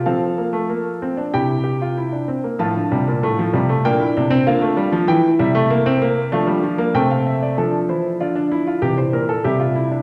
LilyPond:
<<
  \new Staff \with { instrumentName = "Grand piano" } { \time 4/4 \key f \major \tempo 4 = 96 << { f''2 g''4. r8 | a''2 g''4 f''4 | g''8 e''4. f''4 g''16 f''16 e''16 d''16 | a'8 c''8 d''2 e''4 | } \\ { a'2 g'4. r8 | f'2 d'4 f'4 | e'2 d'4 c'4 | d'8 e'8 f'16 d'16 e'16 f'16 g'16 c''16 bes'16 a'16 g'16 f'16 e'16 d'16 | } >> }
  \new Staff \with { instrumentName = "Grand piano" } { \clef bass \time 4/4 \key f \major << { c'8 bes16 a16 bes8 c'16 d'16 e'8 g'16 f'16 e'16 d'16 c'16 bes16 | f8 g8 a16 f16 g16 a16 bes16 e'16 d'16 c'16 bes16 a16 g16 f16 | r8 g16 a16 bes16 c'16 bes8 a16 g16 f16 bes16 a4 | r2 e4 g4 | } \\ { f2 c4. r8 | a,16 d16 c16 bes,16 a,8 c8 bes,8 c8 d4 | e8 c4. f4 c4 | f8 e8 d4 c8 bes,8 c4 | } >> }
>>